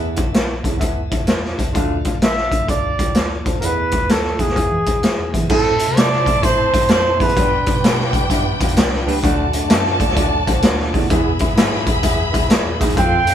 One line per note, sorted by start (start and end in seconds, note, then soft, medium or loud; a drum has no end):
0.00 0.18 E2 loud
0.00 0.24 E2 medium
0.00 0.61 E3 medium
0.00 1.72 E3 medium
0.00 3.58 A3 medium
0.00 1.73 B3 medium
0.00 1.71 E4 medium
0.16 0.59 B1 medium
0.16 0.27 B3 medium
0.16 0.27 E4 medium
0.16 0.27 A4 medium
0.16 0.27 E5 medium
0.16 kick medium
0.16 closed hi-hat medium
0.32 0.52 B3 medium
0.32 0.52 E4 medium
0.32 0.52 A4 medium
0.32 0.52 E5 medium
0.32 snare loud
0.32 closed hi-hat medium
0.63 0.78 C2 medium
0.63 0.78 E2 medium
0.63 0.74 B3 medium
0.63 0.74 E4 medium
0.63 0.74 A4 medium
0.63 0.74 E5 medium
0.63 kick medium
0.63 closed hi-hat medium
0.79 1.15 D2 medium
0.79 0.99 B3 loud
0.79 0.99 E4 medium
0.79 0.99 A4 medium
0.79 0.99 E5 loud
0.79 kick medium
0.79 closed hi-hat medium
1.10 1.21 B3 medium
1.10 1.21 E4 medium
1.10 1.21 A4 medium
1.10 1.22 E5 medium
1.10 kick medium
1.10 closed hi-hat medium
1.20 1.54 E2 medium
1.26 1.46 B3 medium
1.26 1.46 E4 medium
1.26 1.46 A4 medium
1.26 1.46 E5 medium
1.26 snare medium
1.26 closed hi-hat medium
1.44 snare soft
1.57 1.73 C#2 medium
1.57 1.68 B3 medium
1.57 1.68 E4 medium
1.57 1.68 A4 medium
1.57 1.68 E5 medium
1.57 kick medium
1.57 closed hi-hat medium
1.72 2.02 D2 loud
1.72 2.00 D2 medium
1.72 2.47 D3 medium
1.72 3.60 F3 medium
1.72 1.92 D4 loud
1.72 3.60 D4 medium
1.72 1.93 F4 loud
1.72 3.60 F4 medium
1.72 1.93 A4 loud
1.72 1.93 F5 loud
1.72 kick loud
1.72 closed hi-hat medium
2.04 2.46 A1 medium
2.04 2.15 D4 medium
2.04 2.15 F4 medium
2.04 2.15 A4 medium
2.04 2.15 F5 medium
2.04 kick medium
2.04 closed hi-hat medium
2.21 2.40 D4 medium
2.21 2.40 A4 medium
2.21 2.66 E5 medium
2.21 2.40 F5 medium
2.21 snare loud
2.21 closed hi-hat medium
2.37 snare soft
2.51 2.66 B1 medium
2.51 2.61 D4 medium
2.51 2.62 F4 medium
2.51 2.62 A4 medium
2.51 kick medium
2.51 closed hi-hat medium
2.66 3.02 C2 medium
2.66 2.86 D4 medium
2.66 2.86 F4 medium
2.66 2.87 A4 medium
2.66 3.43 D5 loud
2.66 2.87 F5 medium
2.66 kick medium
2.66 closed hi-hat medium
2.99 3.09 D4 medium
2.99 3.09 F4 medium
2.99 3.09 A4 medium
2.99 3.10 G5 medium
2.99 kick medium
2.99 closed hi-hat medium
3.07 3.41 D2 medium
3.13 3.33 D4 medium
3.13 3.33 F4 medium
3.13 3.33 A4 medium
3.13 3.33 F5 medium
3.13 snare loud
3.13 closed hi-hat medium
3.44 3.60 D#2 medium
3.44 3.55 D4 medium
3.44 3.55 F4 medium
3.44 3.55 A4 medium
3.44 3.56 C5 medium
3.44 kick medium
3.44 closed hi-hat medium
3.59 3.99 E2 medium
3.59 3.89 E2 loud
3.59 4.35 E3 medium
3.59 5.47 E3 medium
3.59 4.55 A3 medium
3.59 3.80 B3 medium
3.59 5.47 B3 medium
3.59 3.80 E4 medium
3.59 5.47 E4 medium
3.59 3.80 A4 medium
3.59 3.67 A#4 medium
3.59 3.81 E5 loud
3.59 closed hi-hat medium
3.65 4.13 B4 loud
3.91 4.33 D2 medium
3.91 4.02 B3 medium
3.91 4.02 E4 medium
3.91 4.02 A4 medium
3.91 4.02 E5 medium
3.91 kick medium
3.91 closed hi-hat medium
4.07 4.27 B3 medium
4.07 4.27 E4 medium
4.07 4.27 A4 medium
4.07 4.27 D5 medium
4.07 snare loud
4.07 closed hi-hat medium
4.12 4.42 A4 medium
4.25 snare soft
4.38 4.53 E2 medium
4.38 4.49 B3 medium
4.38 4.49 E4 medium
4.38 5.34 G#4 medium
4.38 4.49 A4 medium
4.38 4.49 E5 medium
4.38 kick medium
4.38 closed hi-hat medium
4.48 snare soft
4.55 4.69 E2 loud
4.55 5.29 E3 medium
4.55 5.48 G#3 medium
4.55 4.74 B3 medium
4.55 4.74 E4 medium
4.55 4.75 G#4 medium
4.55 4.75 E5 medium
4.55 kick medium
4.55 closed hi-hat medium
4.71 4.84 E3 medium
4.86 4.94 E2 medium
4.86 4.96 B3 medium
4.86 4.96 E4 medium
4.86 4.97 G#4 medium
4.86 4.97 B4 medium
4.86 kick medium
4.86 closed hi-hat medium
4.95 5.02 F2 medium
5.02 5.10 E2 soft
5.02 5.21 B3 medium
5.02 5.21 E4 medium
5.02 5.22 G#4 medium
5.02 5.22 E5 medium
5.02 snare medium
5.02 closed hi-hat medium
5.18 5.31 E2 medium
5.32 5.48 E3 medium
5.32 5.42 B3 medium
5.32 5.43 E4 medium
5.32 5.43 G#4 medium
5.32 5.43 E5 medium
5.32 kick medium
5.32 closed hi-hat medium
5.49 5.74 A2 medium
5.49 5.83 A2 loud
5.49 6.23 A2 medium
5.49 7.35 E3 medium
5.49 7.35 A3 medium
5.49 5.68 C4 loud
5.49 7.35 C4 medium
5.49 5.68 E4 medium
5.49 7.33 E4 medium
5.49 7.36 E4 medium
5.49 5.69 A4 medium
5.49 5.99 A4 loud
5.49 7.33 C5 medium
5.49 5.69 E5 loud
5.49 7.33 A5 medium
5.49 5.93 A5 medium
5.49 kick loud
5.49 crash medium
5.79 5.90 C4 medium
5.79 5.90 E4 medium
5.79 5.90 A4 medium
5.79 5.90 E5 medium
5.79 closed hi-hat medium
5.88 5.95 C3 medium
5.95 6.30 C3 medium
5.95 6.14 C4 medium
5.95 6.15 E4 medium
5.95 6.15 A4 medium
5.95 6.45 D5 loud
5.95 6.15 E5 medium
5.95 6.43 D6 medium
5.95 snare loud
5.95 closed hi-hat medium
6.12 snare soft
6.26 6.36 C4 medium
6.26 6.37 E4 medium
6.26 6.37 A4 medium
6.26 6.37 E5 medium
6.26 kick medium
6.26 closed hi-hat medium
6.35 6.42 A2 medium
6.43 6.70 A2 medium
6.43 6.62 C4 medium
6.43 6.62 E4 medium
6.43 6.62 A4 medium
6.43 6.90 C5 loud
6.43 6.62 E5 loud
6.43 6.90 C6 medium
6.43 kick loud
6.43 closed hi-hat medium
6.74 6.88 G2 loud
6.74 6.84 C4 medium
6.74 6.84 E4 medium
6.74 6.84 A4 medium
6.74 6.84 G5 medium
6.74 kick loud
6.74 closed hi-hat medium
6.81 closed hi-hat medium
6.89 7.16 F2 medium
6.89 7.08 C4 medium
6.89 7.09 E4 medium
6.89 7.09 A4 medium
6.89 7.09 C5 medium
6.89 7.19 C6 medium
6.89 snare loud
6.89 closed hi-hat medium
6.93 7.23 C5 medium
7.19 7.33 E2 medium
7.19 7.34 F#2 medium
7.19 7.30 C4 medium
7.19 7.30 E4 medium
7.19 7.30 A4 medium
7.19 8.15 B4 loud
7.19 7.31 E5 medium
7.19 8.14 B5 medium
7.19 kick medium
7.19 open hi-hat medium
7.29 closed hi-hat soft
7.36 7.60 G2 medium
7.36 7.70 G2 loud
7.36 8.10 G2 medium
7.36 9.21 D3 medium
7.36 9.22 G3 medium
7.36 9.22 B3 medium
7.36 7.55 B3 loud
7.36 9.20 D4 medium
7.36 11.07 D4 medium
7.36 7.56 D4 medium
7.36 7.56 G4 medium
7.36 9.20 B4 medium
7.36 7.56 D5 loud
7.36 9.20 G5 loud
7.36 kick loud
7.36 closed hi-hat medium
7.66 7.76 B3 medium
7.66 7.77 D4 medium
7.66 7.77 G4 medium
7.66 7.77 D5 medium
7.66 kick medium
7.66 closed hi-hat medium
7.75 7.82 B2 medium
7.83 8.17 B2 medium
7.83 8.02 B3 medium
7.83 8.02 D4 medium
7.83 8.02 G4 medium
7.83 8.03 A4 medium
7.83 snare loud
7.83 closed hi-hat medium
8.00 snare soft
8.13 8.24 B3 medium
8.13 8.24 D4 medium
8.13 8.25 G4 medium
8.13 8.25 B4 loud
8.13 kick medium
8.13 closed hi-hat medium
8.22 8.29 G2 medium
8.30 8.57 G2 loud
8.30 8.49 B3 loud
8.30 8.49 D4 loud
8.30 8.49 G4 loud
8.30 8.50 E5 loud
8.30 kick medium
8.30 closed hi-hat medium
8.60 8.77 F2 medium
8.60 8.70 B3 medium
8.60 8.71 D4 medium
8.60 8.71 G4 medium
8.60 8.71 F5 loud
8.60 kick medium
8.60 closed hi-hat medium
8.68 closed hi-hat medium
8.75 9.03 C2 loud
8.75 8.95 B3 medium
8.75 8.95 D4 medium
8.75 8.95 G4 medium
8.75 8.96 D5 loud
8.75 snare loud
8.75 closed hi-hat medium
8.93 snare soft
9.06 9.21 C#2 medium
9.06 9.20 G2 medium
9.06 9.17 B3 medium
9.06 9.17 D4 medium
9.06 9.17 G4 medium
9.06 9.17 B4 loud
9.06 open hi-hat medium
9.22 9.47 D2 medium
9.22 9.57 D2 loud
9.22 9.96 D3 medium
9.22 11.09 D3 medium
9.22 11.09 F#3 medium
9.22 9.41 A3 loud
9.22 11.09 A3 medium
9.22 9.42 D4 loud
9.22 9.42 F#4 loud
9.22 11.07 F#4 medium
9.22 9.42 D5 loud
9.22 11.07 D5 loud
9.22 11.07 A5 loud
9.22 kick loud
9.22 closed hi-hat medium
9.53 9.64 A3 medium
9.53 9.64 D4 medium
9.53 9.64 F#4 medium
9.53 9.64 D5 loud
9.53 closed hi-hat medium
9.62 9.69 F#2 medium
9.68 10.04 F#2 medium
9.68 9.88 A3 medium
9.68 9.88 D4 medium
9.68 9.88 F#4 medium
9.68 9.89 E5 medium
9.68 snare loud
9.68 closed hi-hat medium
9.85 snare soft
9.98 10.09 A3 medium
9.98 10.10 D4 medium
9.98 10.10 F#4 medium
9.98 10.10 D5 loud
9.98 kick medium
9.98 closed hi-hat medium
10.08 10.16 D2 medium
10.08 snare soft
10.15 10.43 D2 loud
10.15 10.34 A3 loud
10.15 10.35 D4 loud
10.15 10.35 F#4 loud
10.15 10.35 D5 loud
10.15 kick medium
10.15 closed hi-hat medium
10.47 10.62 C2 medium
10.47 10.57 A3 medium
10.47 10.57 D4 medium
10.47 10.57 F#4 medium
10.47 10.57 C5 loud
10.47 kick loud
10.47 closed hi-hat medium
10.62 10.91 D2 medium
10.62 10.81 A3 medium
10.62 10.82 D4 medium
10.62 10.82 F#4 medium
10.62 10.82 D5 loud
10.62 snare loud
10.62 closed hi-hat medium
10.79 snare soft
10.94 11.08 D#2 medium
10.94 11.07 E2 medium
10.94 11.04 A3 medium
10.94 11.04 D4 medium
10.94 11.04 F#4 medium
10.94 11.05 D5 loud
10.94 kick medium
10.94 open hi-hat medium
11.10 11.34 E2 medium
11.10 11.44 E2 loud
11.10 11.84 E3 medium
11.10 12.96 E3 medium
11.10 12.96 G#3 medium
11.10 11.29 B3 loud
11.10 12.96 B3 medium
11.10 11.29 E4 loud
11.10 12.96 E4 medium
11.10 11.29 G#4 loud
11.10 12.94 G#4 medium
11.10 12.94 E5 medium
11.10 11.30 E5 loud
11.10 12.94 B5 loud
11.10 kick loud
11.10 closed hi-hat medium
11.39 11.50 B3 medium
11.39 11.50 E4 medium
11.39 11.51 G#4 medium
11.39 11.51 E5 loud
11.39 kick medium
11.39 closed hi-hat medium
11.48 11.55 G#2 medium
11.55 11.90 G#2 loud
11.55 11.74 B3 medium
11.55 11.75 E4 medium
11.55 11.75 G#4 medium
11.55 11.75 E5 loud
11.55 snare loud
11.55 closed hi-hat medium
11.73 snare soft
11.87 11.97 B3 medium
11.87 11.97 E4 medium
11.87 11.97 G#4 medium
11.87 11.98 E5 medium
11.87 kick medium
11.87 closed hi-hat medium
11.95 12.02 E2 medium
12.02 12.30 E2 loud
12.02 12.22 B3 loud
12.02 12.22 E4 loud
12.02 12.22 G#4 loud
12.02 12.22 E5 loud
12.02 kick medium
12.02 closed hi-hat medium
12.32 12.48 D2 medium
12.32 12.43 B3 medium
12.32 12.43 E4 medium
12.32 12.44 G#4 medium
12.32 12.44 E5 loud
12.32 kick medium
12.32 closed hi-hat medium
12.48 12.68 B3 medium
12.48 12.68 E4 medium
12.48 12.68 G#4 medium
12.48 12.69 D5 medium
12.48 snare loud
12.48 closed hi-hat medium
12.65 12.79 E2 medium
12.79 12.88 D#2 medium
12.79 12.94 G#2 medium
12.79 12.90 B3 medium
12.79 12.90 E4 medium
12.79 12.90 G#4 medium
12.79 12.90 E5 loud
12.79 kick medium
12.79 closed hi-hat medium
12.89 12.96 E2 medium
12.89 closed hi-hat medium
12.94 13.31 F2 loud
12.94 13.22 F2 medium
12.94 13.14 C4 medium
12.94 13.14 F4 medium
12.94 13.34 F4 medium
12.94 13.15 A4 medium
12.94 13.34 A4 medium
12.94 13.15 F5 loud
12.94 13.34 F5 medium
12.94 13.34 C6 loud
12.94 13.34 G6 medium
12.94 kick loud
12.94 closed hi-hat medium
12.98 13.34 F3 medium
12.98 13.34 A3 medium
12.98 13.34 C4 medium
12.98 13.34 G5 loud
13.25 13.34 C4 medium
13.25 13.34 F4 medium
13.25 13.34 A4 medium
13.25 13.34 F5 medium
13.25 closed hi-hat medium